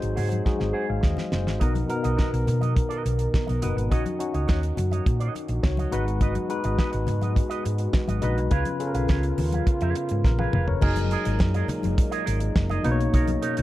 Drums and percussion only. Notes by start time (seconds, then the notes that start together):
0.02 closed hi-hat
0.17 open hi-hat, low conga
0.31 closed hi-hat, high conga
0.46 kick, snare, muted conga, high conga
0.60 snare
1.03 kick, snare, muted conga
1.17 snare, high conga
1.32 snare, low conga
1.47 snare
1.61 kick, closed hi-hat, low conga
1.75 closed hi-hat, high conga
1.90 closed hi-hat, muted conga
2.04 closed hi-hat
2.19 kick, snare, muted conga
2.34 closed hi-hat
2.47 closed hi-hat, muted conga, low conga
2.62 closed hi-hat, high conga
2.77 kick, closed hi-hat, muted conga
2.91 closed hi-hat
3.05 closed hi-hat, muted conga
3.19 closed hi-hat
3.34 kick, snare, muted conga
3.48 closed hi-hat, high conga
3.62 closed hi-hat, muted conga, low conga
3.78 closed hi-hat
3.91 kick, closed hi-hat, low conga
4.06 closed hi-hat, high conga
4.20 closed hi-hat, muted conga
4.34 closed hi-hat
4.48 kick, snare, muted conga
4.63 closed hi-hat
4.77 closed hi-hat, muted conga, low conga
4.91 closed hi-hat, high conga
5.06 kick, closed hi-hat, muted conga
5.21 closed hi-hat
5.35 closed hi-hat, muted conga
5.48 closed hi-hat
5.63 kick, snare
5.77 closed hi-hat, high conga
5.92 closed hi-hat, low conga
6.08 closed hi-hat
6.21 kick, closed hi-hat, low conga
6.35 closed hi-hat, high conga
6.50 closed hi-hat
6.64 closed hi-hat
6.79 kick, snare
6.93 closed hi-hat
7.07 closed hi-hat, low conga
7.21 closed hi-hat, high conga
7.36 kick, closed hi-hat, muted conga
7.51 closed hi-hat
7.65 closed hi-hat, muted conga
7.78 closed hi-hat
7.93 kick, snare, muted conga
8.08 closed hi-hat, high conga
8.22 closed hi-hat, muted conga, low conga
8.38 closed hi-hat
8.51 kick, closed hi-hat, muted conga, low conga
8.65 closed hi-hat, high conga
8.80 closed hi-hat
8.95 closed hi-hat
9.08 kick, snare, muted conga
9.23 closed hi-hat
9.38 open hi-hat, muted conga, low conga
9.52 closed hi-hat, high conga
9.67 kick, closed hi-hat, muted conga
9.81 closed hi-hat
9.95 closed hi-hat, muted conga
10.09 closed hi-hat
10.24 kick, snare
10.38 high tom, high conga
10.53 mid tom, low conga
10.68 floor tom
10.82 kick, crash, low conga
10.96 closed hi-hat, high conga
11.11 closed hi-hat
11.25 closed hi-hat
11.39 kick, snare, muted conga
11.54 closed hi-hat
11.68 closed hi-hat, low conga
11.83 closed hi-hat, high conga
11.98 kick, closed hi-hat, muted conga
12.12 closed hi-hat
12.27 closed hi-hat, muted conga
12.40 closed hi-hat
12.56 kick, snare, muted conga
12.70 closed hi-hat, high conga
12.84 closed hi-hat, low conga
13.01 closed hi-hat
13.14 kick, closed hi-hat, muted conga, low conga
13.28 closed hi-hat, high conga
13.43 closed hi-hat
13.57 closed hi-hat